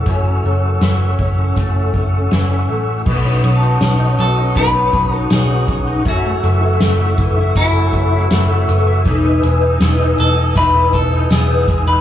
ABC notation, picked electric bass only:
X:1
M:4/4
L:1/8
Q:1/4=80
K:F#dor
V:1 name="Picked electric bass" clef=bass
F,,, F,,, F,,, F,,, F,,, F,,, F,,, A,,, | B,,, B,,, B,,, B,,, B,,, B,,, B,,, B,,, | F,,, F,,, F,,, F,,, F,,, F,,, F,,, F,,, | E,,, E,,, E,,, E,,, E,,, E,,, E,,, E,,, |]